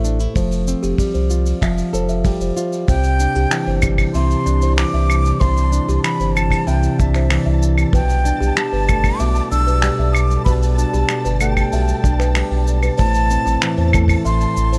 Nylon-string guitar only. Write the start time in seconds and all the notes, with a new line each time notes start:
Already playing: A2 A3 C4 B4
0.04 D4
0.20 E4
0.36 F3
0.68 C4
0.99 G3
1.30 F4
1.61 F3
1.93 A4
2.25 G3
2.57 F4
2.88 C3
3.20 D4
3.51 E3
3.83 G3
4.15 C3
4.46 D4
4.78 E3
5.41 C3
5.72 D4
6.04 E3
6.35 G3
6.67 C3
6.99 D4
7.30 E3
7.93 B2
8.25 D4
8.57 G3
8.89 A3
9.20 B2
9.52 D4
9.83 G3
10.46 B2
10.78 D4
11.10 G3
11.41 A3
11.73 B2
12.04 D4
12.36 G3
12.99 A2
13.31 C4
13.62 E3
13.94 A3
14.25 A2
14.57 C4